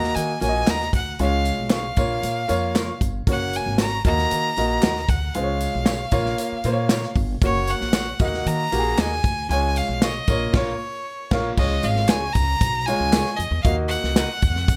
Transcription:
Already playing: A#3 F#4 D#5 A#5
0.03 snare
0.15 D#3 G#5, closed hi-hat, tambourine
0.41 A#1 A#3 F#4 C#5 G#5, closed hi-hat, tambourine
0.49 D#5
0.67 D#2 F#4 A#4 D#5 A#5, snare, clap, closed hi-hat, tambourine
0.81 snare
0.93 D2 F#5, kick, closed hi-hat
1.19 C#2 G#3 F4 C#5 F5, closed hi-hat
1.45 closed hi-hat, tambourine
1.59 B1
1.70 F4 G#4 C#5, snare, clap, closed hi-hat, tambourine
1.74 F5
1.96 A#1 A#3 F4 C#5, kick, closed hi-hat, tambourine
2.23 A#2, closed hi-hat, tambourine
2.48 F2 A#3 F4 C#5, closed hi-hat, tambourine
2.75 F4 A#4 C#5, snare, clap, closed hi-hat, tambourine
3.01 G1, kick, closed hi-hat, tambourine
3.27 F#1 A#3 F#4 C#5, kick, closed hi-hat
3.31 F#5
3.53 G#5, closed hi-hat, tambourine
3.66 G#1
3.78 F#4 A#4 C#5 A#5, snare, clap, closed hi-hat, tambourine
4.04 D#2 A#3 F#4 D#5 A#5, kick, closed hi-hat, tambourine
4.18 snare
4.30 D#3, closed hi-hat, tambourine
4.57 A#1 A#3 F#4 D#5, closed hi-hat, tambourine
4.82 D#2 F#4 A#4 D#5, snare, clap, closed hi-hat, tambourine
4.96 snare
5.09 D2 F#5, kick, closed hi-hat, tambourine
5.34 C#2 G#3 F4 C5 F5, closed hi-hat
5.43 C#5
5.60 closed hi-hat, tambourine
5.75 B1
5.85 F4 G#4 C#5, snare, clap, closed hi-hat, tambourine
6.11 A#1 A#3 F4 C#5, kick, closed hi-hat, tambourine
6.25 snare
6.38 closed hi-hat, tambourine
6.52 muted upright bass stroke
6.64 A#2 A#3 F4 C5, closed hi-hat, tambourine
6.72 C#5
6.89 F4 A#4 C#5, snare, clap, closed hi-hat, tambourine
7.02 snare
7.16 G1, kick, open hi-hat, tambourine
7.42 F#1 A#3 F#4 C#5, kick, closed hi-hat, tambourine
7.67 F#5, closed hi-hat, tambourine
7.81 A#1, snare
7.93 F#4 A#4 C#5, snare, clap, closed hi-hat, tambourine
8.19 D#2 A#3 F#4 D#5, kick, closed hi-hat, tambourine
8.24 F#5
8.34 snare
8.46 D#3 A#5, closed hi-hat, tambourine
8.72 A#1 A#3 F#4 G4, closed hi-hat, tambourine
8.79 G#4
8.98 D#2 F#4 A#4 D#5 G#5, snare, clap, closed hi-hat, tambourine
9.24 D2, kick, closed hi-hat, tambourine
9.49 C#2 G#3 F4 C#5 G#5, closed hi-hat
9.76 F5, closed hi-hat, tambourine
9.88 B1
10.02 F4 G#4 C#5 D#5, snare, clap, closed hi-hat, tambourine
10.27 A#1 A#3 F4 C#5, kick, closed hi-hat, tambourine
10.53 A#1 A#3 F4 A#4 C#5, kick, snare, crash
11.31 A#1 A#3 F4 A#4 C#5, kick, snare, crash
11.57 C#2 G#3 F4 C#5 D#5, kick, crash, tambourine
11.83 G#1 F5, closed hi-hat, tambourine
11.96 snare
12.08 C#2 F4 G#4 C#5 G#5, snare, clap, closed hi-hat, tambourine
12.33 C#2 A#5, kick, closed hi-hat, tambourine
12.61 B1, kick, closed hi-hat, tambourine
12.86 G#3 F4 C#5 G#5, closed hi-hat, tambourine
13.00 C#2
13.12 F4 G#4 C#5, snare, clap, closed hi-hat, tambourine
13.26 snare
13.37 F2 D#5, closed hi-hat
13.51 E2
13.63 D#2 A#3 F#4 D#5 F5, kick, closed hi-hat
13.88 F#5, closed hi-hat, tambourine
14.03 C#2, snare
14.16 F#4 A#4 D#5, snare, clap, closed hi-hat, tambourine
14.42 D#2, kick, closed hi-hat, tambourine
14.55 F2, snare
14.68 kick, closed hi-hat, tambourine

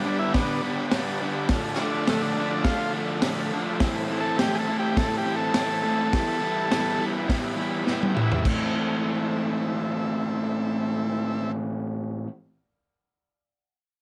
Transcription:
Already playing: D4 G4 B4
0.04 G2 D3 G3 B3 D4
0.19 E4
0.34 G2 D3 G3 B3 D4, kick, snare, open hi-hat
0.61 G2 D3 G3 B3 D4
0.91 G2 D3 G3 B3 D4, snare, open hi-hat
1.20 G2 D3 G3 B3 D4
1.49 D3 F3 A3 D4 F4 A4, kick, snare, open hi-hat
1.76 D3 C#4
1.80 F3 A3 D4
2.07 D3 F3 A3 D4, snare, open hi-hat
2.22 D4
2.37 D3 F3 A3 D4
2.50 D4
2.64 D3 F3 A3 D4 F4, kick, snare, open hi-hat
2.93 D3 F3 A3 D4
3.22 D3 F3 A3 D4, snare, open hi-hat
3.52 D3 F3 A3 D4
3.79 A2 E3 A3 C4 E4 A4, kick, snare, open hi-hat
4.09 A2 E3 A3 C4 E4
4.20 A4
4.38 A2 E3 A3 C4 E4 G4, snare, open hi-hat
4.55 G#4 A4
4.67 A2 E3 A3 C4 E4
4.79 G4
4.96 A2 E3 A3 C4 E4 A4, kick, snare, open hi-hat
5.18 G4
5.25 A2 E3 A3 C4 E4
5.36 A4
5.53 A2 E3 A3 C4 E4, snare, open hi-hat
5.83 A2 E3 A3 C4 E4
6.10 E3 G3 B3 E4 G4, kick, snare, open hi-hat
6.14 E4
6.41 E3 G3 B3 E4
6.70 E3 G3 B3 E4, snare, open hi-hat
6.98 E3 G3 B3 E4
7.26 E3 G3 B3 E4, kick, snare, open hi-hat
7.56 E3 G3 B3 E4 B5
7.85 E3 G3 B3 E4 G5, snare
8.03 high tom
8.14 E3 G3 B3 E4 E5, mid tom
8.32 floor tom
8.42 A2 E3 A3 C4 E4 A4, kick, crash
8.47 E4

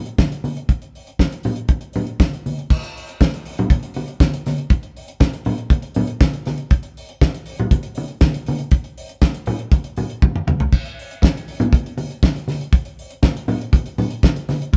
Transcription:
0.06 closed hi-hat
0.18 kick, snare, high conga
0.32 closed hi-hat
0.44 open hi-hat, high conga
0.57 closed hi-hat
0.69 kick, closed hi-hat
0.82 closed hi-hat
0.95 open hi-hat
1.07 closed hi-hat
1.19 kick, snare, high conga
1.32 closed hi-hat
1.43 open hi-hat, low conga
1.56 closed hi-hat
1.68 kick, closed hi-hat, muted conga
1.81 closed hi-hat
1.93 open hi-hat, muted conga, low conga
2.07 closed hi-hat
2.20 kick, snare, high conga
2.33 closed hi-hat
2.46 open hi-hat, high conga
2.59 closed hi-hat
2.70 kick, crash, muted conga
2.83 closed hi-hat
2.97 open hi-hat
3.09 closed hi-hat
3.21 kick, snare, high conga
3.34 closed hi-hat
3.45 open hi-hat
3.58 closed hi-hat, low conga
3.70 kick, closed hi-hat, muted conga
3.83 closed hi-hat
3.94 open hi-hat, muted conga
4.08 closed hi-hat
4.20 kick, snare, high conga
4.34 closed hi-hat
4.46 snare, open hi-hat, high conga
4.58 closed hi-hat
4.70 kick, closed hi-hat, muted conga
4.83 closed hi-hat
4.96 open hi-hat
5.08 closed hi-hat
5.20 kick, snare, high conga
5.33 closed hi-hat
5.45 open hi-hat, low conga
5.58 closed hi-hat
5.70 kick, closed hi-hat, muted conga
5.82 closed hi-hat
5.94 open hi-hat, muted conga, low conga
6.07 closed hi-hat
6.21 kick, snare, high conga
6.33 closed hi-hat
6.46 snare, open hi-hat, high conga
6.58 closed hi-hat
6.71 kick, closed hi-hat
6.83 closed hi-hat
6.97 open hi-hat
7.09 closed hi-hat
7.21 kick, snare, high conga
7.34 closed hi-hat
7.46 open hi-hat
7.59 closed hi-hat, low conga
7.71 kick, closed hi-hat, muted conga
7.83 closed hi-hat
7.95 open hi-hat, muted conga
8.08 closed hi-hat
8.21 kick, snare, high conga
8.34 closed hi-hat
8.46 open hi-hat, high conga
8.59 closed hi-hat
8.71 kick, closed hi-hat
8.84 closed hi-hat
8.98 open hi-hat
9.09 closed hi-hat
9.22 kick, snare, high conga
9.34 closed hi-hat
9.46 open hi-hat, low conga
9.59 closed hi-hat
9.72 kick, closed hi-hat, muted conga
9.84 closed hi-hat
9.96 open hi-hat, muted conga, low conga
10.10 closed hi-hat
10.22 kick, high tom, high conga
10.36 mid tom
10.47 mid tom, high conga
10.60 floor tom
10.73 kick, crash
10.86 closed hi-hat
10.99 open hi-hat
11.11 closed hi-hat
11.22 kick, snare, high conga
11.37 closed hi-hat
11.48 open hi-hat
11.60 closed hi-hat, low conga
11.73 kick, closed hi-hat, muted conga
11.86 closed hi-hat
11.98 open hi-hat, muted conga
12.11 closed hi-hat
12.23 kick, snare, high conga
12.36 closed hi-hat
12.48 snare, open hi-hat, high conga
12.61 closed hi-hat
12.73 kick, closed hi-hat
12.85 closed hi-hat
12.99 open hi-hat
13.10 closed hi-hat
13.23 kick, snare, high conga
13.37 closed hi-hat
13.48 open hi-hat, low conga
13.61 closed hi-hat
13.73 kick, closed hi-hat, muted conga
13.86 closed hi-hat
13.98 open hi-hat, muted conga, low conga
14.10 closed hi-hat
14.23 kick, snare, high conga
14.36 closed hi-hat
14.49 snare, open hi-hat, high conga
14.62 closed hi-hat
14.73 kick, closed hi-hat, muted conga

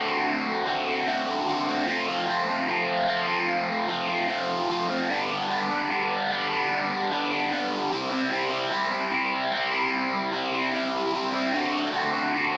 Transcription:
Already playing: D3
0.05 A3 C4 F#4
0.66 D3 A3 C4 F#4
0.86 A3 C4 F#4
1.06 D3 A3 C4 F#4
1.47 D3 A3 C4 F#4
1.67 A3 C4 F#4
1.87 F3 A3 C4 F4
2.07 A3 C4 F4
2.28 F3 A3 C4 F4
2.48 A3 C4 F4
2.67 F3 A3 C4 F4
3.07 F3 A3 C4 F4
3.27 A3 C4 F4
3.88 F3 A3 C4 F4
4.08 A3 C4 F4
4.28 F3 A3 C4 F4
4.68 F3 A3 C4 F4
4.88 A3 C4 F4
5.08 G2 D3 G3 B3 D4
5.28 G3 B3 D4
5.49 D3 G3 B3 D4
5.68 G3 B3 D4
5.89 G2 D3 G3 B3 D4
6.29 D3 G3 B3 D4
6.50 G3 B3 D4
7.10 D3 G3 B3 D4
7.30 G3 B3 D4
7.50 G2 D3 G3 B3 D4
7.90 C3 G3 C4 E4
8.11 G3 C4 E4
8.31 C3 G3 C4 E4
8.50 G3 C4 E4
8.71 C3 G3 C4 E4
8.91 G3 C4 E4
9.11 C3 G3 C4 E4
9.52 C3 G3 C4 E4
9.71 G3 C4 E4
10.32 C3 G3 C4 E4
10.52 G3 C4 E4
10.72 C3 G3 C4 E4
11.12 C3 G3 C4 E4
11.33 G3 C4 E4
11.53 D3 A3 C4 F#4
11.73 A3 C4 F#4
11.93 D3 A3 C4 F#4
12.13 A3 C4 F#4
12.33 D3 A3 C4 F#4

